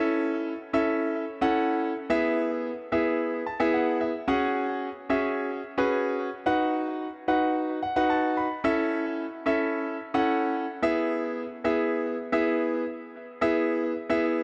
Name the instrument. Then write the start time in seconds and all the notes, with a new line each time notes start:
grand piano
Already playing: C#4 E4 A4 E5
0.73 C#4 E4 A4 E5
1.41 C#4 E4 A4 F#5
2.10 B3 E4 G#4 E5
2.92 B3 E4 G#4 E5
3.46 A5
3.60 B3 E4 G#4 E5 G#5
3.74 F#5
4.01 E5
4.28 C#4 F#4 G#4 F#5
5.10 C#4 F#4 G#4 E5
5.78 C#4 F#4 G#4 B4
6.46 D#4 F#4 B4 F#5
7.28 D#4 F#4 B4 F#5
7.83 F#5
7.96 D#4 F#4 B4 F#5
8.10 A5
8.37 B5
8.64 C#4 E4 A4 E5
9.46 C#4 E4 A4 E5
10.14 C#4 E4 A4 F#5
10.82 B3 E4 G#4 E5
11.64 B3 E4 G#4 E5
12.32 B3 E4 G#4 E5
13.41 B3 E4 G#4 E5
14.09 B3 E4 G#4 E5